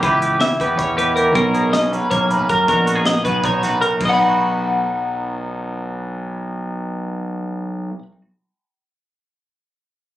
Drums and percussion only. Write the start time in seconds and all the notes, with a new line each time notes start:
0.03 kick, closed hi-hat
0.22 closed hi-hat
0.41 snare, closed hi-hat
0.60 kick, closed hi-hat
0.79 kick, closed hi-hat
0.99 closed hi-hat
1.17 closed hi-hat
1.35 kick, closed hi-hat
1.54 closed hi-hat
1.73 snare, closed hi-hat
1.93 closed hi-hat
2.11 kick, closed hi-hat
2.31 closed hi-hat
2.49 kick, closed hi-hat
2.68 kick, closed hi-hat
2.87 closed hi-hat
3.06 snare, closed hi-hat
3.25 kick, closed hi-hat
3.43 kick, closed hi-hat
3.63 snare, closed hi-hat
3.82 closed hi-hat
4.01 kick, crash